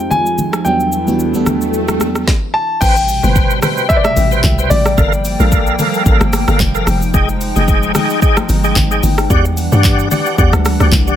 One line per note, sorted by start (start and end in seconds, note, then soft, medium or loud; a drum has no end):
0.00 0.68 F2 medium
0.00 0.63 F3 medium
0.00 0.63 G#3 medium
0.00 0.67 G#3 medium
0.00 0.68 C4 medium
0.00 0.63 D#4 medium
0.00 0.68 D#4 medium
0.00 0.63 F4 medium
0.00 0.67 F4 medium
0.00 0.67 G4 loud
0.00 0.67 G#4 medium
0.00 0.13 G5 loud
0.00 swell medium
0.11 0.67 G#5 loud
0.11 high conga medium
0.11 low conga medium
0.11 shaker medium
0.26 shaker medium
0.38 high conga medium
0.38 low conga medium
0.38 shaker loud
0.53 cross-stick loud
0.53 shaker medium
0.65 0.98 E2 medium
0.65 2.26 E3 medium
0.65 0.99 F#3 medium
0.65 0.98 G3 medium
0.65 2.26 B3 medium
0.65 0.99 B3 medium
0.65 2.26 D4 medium
0.65 0.99 D4 medium
0.65 2.26 E4 medium
0.65 2.23 G5 medium
0.65 shaker medium
0.80 shaker soft
0.92 shaker medium
1.07 1.28 E2 medium
1.07 1.28 G3 medium
1.07 1.29 B3 medium
1.07 1.29 D4 medium
1.07 1.29 F#4 medium
1.07 high conga medium
1.07 shaker medium
1.19 shaker medium
1.34 2.20 E2 medium
1.34 2.20 G3 medium
1.34 2.21 B3 medium
1.34 2.21 D4 medium
1.34 2.21 A4 loud
1.34 shaker soft
1.46 cross-stick medium
1.46 high conga soft
1.46 low conga medium
1.46 shaker medium
1.61 shaker medium
1.74 shaker medium
1.88 cross-stick loud
1.88 high conga medium
1.88 shaker soft
2.00 cross-stick medium
2.00 high conga medium
2.00 shaker medium
2.15 cross-stick medium
2.15 shaker soft
2.28 kick loud
2.28 snare medium
2.54 2.82 A5 loud
2.81 3.20 A1 loud
2.81 4.96 B2 medium
2.81 4.96 C3 medium
2.81 6.83 G3 medium
2.81 2.96 B4 loud
2.81 2.97 C5 medium
2.81 3.58 G5 loud
2.81 9.26 G5 medium
2.81 2.97 G5 loud
2.81 kick loud
2.81 crash loud
2.81 shaker medium
2.96 shaker medium
3.09 open hi-hat soft
3.09 shaker medium
3.23 3.60 G1 medium
3.23 3.60 B4 medium
3.23 3.60 C5 medium
3.23 3.60 G5 medium
3.23 high conga medium
3.23 shaker medium
3.36 kick loud
3.36 shaker medium
3.50 shaker medium
3.62 3.88 B4 medium
3.62 3.88 C5 medium
3.62 3.88 G5 medium
3.62 cross-stick loud
3.62 open hi-hat medium
3.62 high conga medium
3.62 low conga medium
3.62 shaker loud
3.78 shaker medium
3.89 4.04 B4 loud
3.89 4.05 C5 medium
3.89 3.97 E5 loud
3.89 4.05 G5 loud
3.89 kick loud
3.89 shaker medium
3.97 4.05 D5 medium
4.04 4.72 E5 loud
4.04 cross-stick loud
4.04 high conga medium
4.04 shaker medium
4.16 4.42 A1 medium
4.16 open hi-hat medium
4.16 high conga medium
4.16 shaker medium
4.31 4.44 B4 medium
4.31 4.44 C5 medium
4.31 4.44 G5 medium
4.31 shaker medium
4.44 4.69 C2 loud
4.44 kick medium
4.44 clap loud
4.44 high conga medium
4.44 low conga medium
4.44 shaker medium
4.58 4.71 B4 medium
4.58 4.71 C5 medium
4.58 4.71 G5 medium
4.58 shaker medium
4.70 4.96 A1 medium
4.70 5.74 D5 loud
4.70 open hi-hat medium
4.70 high conga medium
4.70 low conga medium
4.70 shaker loud
4.86 cross-stick loud
4.86 shaker medium
4.97 5.36 G1 loud
4.97 9.26 F3 medium
4.97 6.85 A#3 medium
4.97 5.13 A4 loud
4.97 5.13 A#4 medium
4.97 5.13 F5 loud
4.97 kick loud
4.97 shaker medium
5.13 shaker medium
5.25 open hi-hat soft
5.25 shaker medium
5.39 5.76 A#1 loud
5.39 5.76 A4 medium
5.39 5.76 A#4 medium
5.39 5.76 F5 medium
5.39 high conga medium
5.39 shaker medium
5.52 kick loud
5.52 shaker medium
5.67 shaker medium
5.79 6.04 A4 medium
5.79 6.04 A#4 medium
5.79 6.04 F5 medium
5.79 open hi-hat medium
5.79 high conga medium
5.79 low conga medium
5.79 shaker loud
5.94 shaker medium
6.06 6.20 A1 loud
6.06 6.21 A4 loud
6.06 6.21 A#4 medium
6.06 6.21 F5 loud
6.06 kick loud
6.06 shaker medium
6.21 6.46 G1 loud
6.21 cross-stick loud
6.21 high conga medium
6.21 shaker medium
6.33 cross-stick loud
6.33 open hi-hat medium
6.33 high conga medium
6.33 shaker medium
6.48 6.59 G1 medium
6.48 6.60 A4 medium
6.48 6.60 A#4 medium
6.48 6.60 F5 medium
6.48 cross-stick loud
6.48 shaker medium
6.60 6.85 F1 loud
6.60 kick loud
6.60 clap loud
6.60 high conga medium
6.60 low conga medium
6.60 shaker medium
6.75 6.87 A4 medium
6.75 6.87 A#4 medium
6.75 6.87 F5 medium
6.75 shaker medium
6.87 7.12 F1 loud
6.87 9.28 G#3 medium
6.87 9.28 D#4 medium
6.87 cross-stick loud
6.87 open hi-hat medium
6.87 high conga medium
6.87 low conga medium
6.87 shaker loud
7.02 shaker medium
7.14 7.53 F1 loud
7.14 7.29 G#4 loud
7.14 7.29 D#5 medium
7.14 7.29 G5 loud
7.14 kick loud
7.14 shaker medium
7.29 shaker medium
7.41 open hi-hat soft
7.41 shaker medium
7.56 7.92 F1 medium
7.56 7.92 G#4 medium
7.56 7.92 D#5 medium
7.56 7.92 G5 medium
7.56 high conga medium
7.56 shaker medium
7.68 kick loud
7.68 shaker medium
7.83 shaker medium
7.95 8.20 G#4 medium
7.95 8.20 D#5 medium
7.95 8.20 G5 medium
7.95 cross-stick loud
7.95 open hi-hat medium
7.95 high conga medium
7.95 low conga medium
7.95 shaker loud
8.10 shaker medium
8.22 8.37 G#4 loud
8.22 8.37 D#5 medium
8.22 8.37 G5 loud
8.22 kick loud
8.22 shaker medium
8.37 cross-stick loud
8.37 high conga medium
8.37 shaker medium
8.49 8.74 G1 medium
8.49 open hi-hat medium
8.49 high conga medium
8.49 shaker medium
8.64 8.76 G#4 medium
8.64 8.76 D#5 medium
8.64 8.77 G5 medium
8.64 shaker medium
8.76 9.01 G#1 loud
8.76 kick medium
8.76 clap loud
8.76 high conga medium
8.76 low conga medium
8.76 shaker medium
8.91 9.03 G#4 medium
8.91 9.03 D#5 medium
8.91 9.04 G5 medium
8.91 shaker medium
9.03 9.28 G1 medium
9.03 open hi-hat medium
9.03 high conga medium
9.03 low conga medium
9.03 shaker loud
9.18 cross-stick loud
9.18 shaker medium
9.30 9.69 E2 loud
9.30 11.16 E3 medium
9.30 11.16 G3 medium
9.30 11.16 D4 medium
9.30 9.45 G4 medium
9.30 9.45 D5 medium
9.30 11.16 F#5 medium
9.30 9.45 F#5 loud
9.30 kick loud
9.30 shaker medium
9.45 shaker medium
9.57 open hi-hat soft
9.57 shaker medium
9.72 10.08 G2 loud
9.72 10.08 G4 medium
9.72 10.08 D5 medium
9.72 10.09 F#5 medium
9.72 high conga medium
9.72 shaker medium
9.84 kick loud
9.84 clap medium
9.84 shaker medium
9.99 shaker medium
10.11 10.36 G4 medium
10.11 10.36 D5 medium
10.11 10.37 F#5 medium
10.11 open hi-hat medium
10.11 high conga medium
10.11 low conga medium
10.11 shaker loud
10.26 shaker medium
10.38 10.52 E2 loud
10.38 10.53 G4 medium
10.38 10.53 D5 medium
10.38 10.53 F#5 loud
10.38 kick loud
10.38 shaker medium
10.53 10.78 D2 medium
10.53 cross-stick loud
10.53 high conga medium
10.53 shaker medium
10.65 cross-stick loud
10.65 open hi-hat medium
10.65 high conga medium
10.65 shaker medium
10.80 10.92 D2 medium
10.80 10.92 G4 medium
10.80 10.93 D5 medium
10.80 10.93 F#5 medium
10.80 cross-stick medium
10.80 shaker medium
10.92 11.16 C2 loud
10.92 kick medium
10.92 clap loud
10.92 high conga medium
10.92 low conga medium
10.92 shaker medium
11.07 11.16 G4 medium
11.07 11.16 D5 medium
11.07 11.16 F#5 medium
11.07 shaker medium